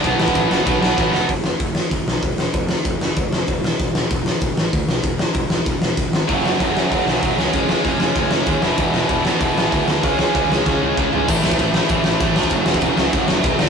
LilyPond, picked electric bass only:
\new Staff \with { instrumentName = "Picked electric bass" } { \clef bass \time 4/4 \key fis \minor \tempo 4 = 192 b,,8 a,,8 a,,8 fis,,8 b,,8 b,,8 a,,8 eis,,8 | fis,,8 fis,,8 fis,,4 fis,,8 b,,8 e,,8 e,,8 | eis,,4 eis,,8 eis,,8 eis,,8 eis,,8 eis,,8 e,,8 | e,,8 e,,8 e,,4 e,,8 a,,8 d,8 b,,8 |
e,,4 e,,8 e,,8 e,,8 e,,8 e,,8 gis,,8 | fis,,8 fis,,8 fis,,4 fis,,8 b,,8 e,,8 cis,8 | eis,,4 eis,,8 eis,,8 eis,,8 eis,,8 dis,8 e,,8 | e,,8 e,,8 e,,4 e,,8 a,,8 d,8 d,8 |
cis,4 cis,8 cis,8 cis,8 cis,8 cis,8 gis,,8 | a,,8 a,,8 a,,4 a,,8 a,,8 a,,4 | fis,,8 e,,8 e,,8 cis,8 fis,,8 fis,,8 e,,8 d,8 | }